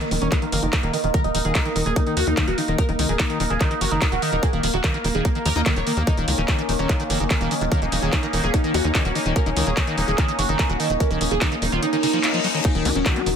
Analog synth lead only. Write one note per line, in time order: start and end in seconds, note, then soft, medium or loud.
0.01 0.07 D#3 medium
0.11 0.17 D#3 medium
0.21 0.28 C#4 medium
0.32 0.38 D#3 medium
0.42 0.48 D#3 medium
0.52 0.58 A#3 loud
0.63 0.69 D#3 medium
0.73 0.79 D#3 medium
0.83 0.89 A#3 medium
0.94 0.99 D#3 medium
1.04 1.10 D#3 medium
1.14 1.20 A#4 loud
1.24 1.30 D#4 medium
1.35 1.41 D#4 medium
1.45 1.51 G#4 medium
1.55 1.61 D#4 medium
1.65 1.71 D#4 medium
1.76 1.82 D#4 medium
1.86 1.92 G#4 medium
1.96 2.02 D#4 medium
2.07 2.12 D#4 medium
2.17 2.23 F#4 medium
2.27 2.33 D#4 medium
2.37 2.43 D#4 medium
2.48 2.54 F#4 medium
2.58 2.64 D#4 medium
2.68 2.74 D#4 medium
2.78 2.84 A#4 loud
2.89 2.95 D#4 medium
2.99 3.05 D#4 medium
3.09 3.15 G#4 medium
3.19 3.25 D#4 medium
3.30 3.36 D#4 medium
3.40 3.46 D#4 medium
3.50 3.56 G#4 medium
3.61 3.67 D#4 medium
3.71 3.77 D#4 medium
3.81 3.87 F#4 loud
3.91 3.97 D#4 medium
4.02 4.08 D#4 medium
4.12 4.18 F#4 loud
4.22 4.28 D#4 medium
4.33 4.39 D#4 medium
4.43 4.49 G#4 loud
4.53 4.59 A#3 medium
4.63 4.69 A#3 medium
4.74 4.80 F#4 medium
4.84 4.90 A#3 medium
4.94 5.00 A#3 medium
5.05 5.10 A#3 medium
5.15 5.21 G#4 loud
5.25 5.31 A#3 medium
5.35 5.41 A#3 medium
5.46 5.52 A#4 medium
5.56 5.62 A#3 medium
5.66 5.72 A#3 medium
5.76 5.82 C#5 medium
5.87 5.93 A#3 medium
5.97 6.03 A#3 medium
6.07 6.13 D#4 loud
6.18 6.23 D#3 medium
6.28 6.34 D#3 medium
6.38 6.44 C#4 medium
6.48 6.54 D#3 medium
6.59 6.65 D#3 medium
6.69 6.75 D#3 medium
6.79 6.85 C#4 medium
6.89 6.95 D#3 medium
7.00 7.06 D#3 medium
7.10 7.16 A#3 medium
7.20 7.26 D#3 medium
7.31 7.37 D#3 medium
7.41 7.47 A#3 medium
7.51 7.57 D#3 medium
7.61 7.67 D#3 medium
7.72 7.78 A#4 loud
7.82 7.88 D#4 medium
7.92 7.98 D#4 medium
8.02 8.08 G#4 medium
8.13 8.19 D#4 medium
8.23 8.29 D#4 medium
8.33 8.39 D#4 medium
8.43 8.49 G#4 medium
8.54 8.60 D#4 medium
8.64 8.70 D#4 medium
8.74 8.80 F#4 medium
8.85 8.91 D#4 medium
8.95 9.01 D#4 medium
9.05 9.11 F#4 medium
9.15 9.21 D#4 medium
9.26 9.32 D#4 medium
9.36 9.42 A#4 loud
9.46 9.52 D#4 medium
9.57 9.63 D#4 medium
9.67 9.73 G#4 medium
9.77 9.83 D#4 medium
9.87 9.93 D#4 medium
9.98 10.04 D#4 medium
10.08 10.14 G#4 loud
10.18 10.24 D#4 medium
10.28 10.34 D#4 medium
10.39 10.45 F#4 medium
10.49 10.55 D#4 medium
10.59 10.65 D#4 medium
10.69 10.75 F#4 medium
10.80 10.86 D#4 medium
10.90 10.96 D#4 medium
11.00 11.06 A#4 loud
11.11 11.17 D#4 medium
11.21 11.27 D#4 medium
11.31 11.37 G#4 medium
11.41 11.47 D#4 medium
11.52 11.58 D#4 medium
11.62 11.68 D#4 medium
11.72 11.78 F4 medium
11.83 11.89 D#4 medium
11.93 11.99 D#4 medium
12.03 12.09 D#4 loud
12.13 12.19 D#4 medium
12.24 12.30 D#4 medium
12.34 12.40 D#4 medium
12.44 12.50 D#4 medium
12.55 12.61 D#4 medium
12.65 12.71 D#4 loud
12.75 12.81 D#3 medium
12.85 12.91 D#3 medium
12.96 13.02 C#4 medium
13.06 13.12 D#3 medium
13.16 13.22 D#3 medium
13.26 13.32 D#3 medium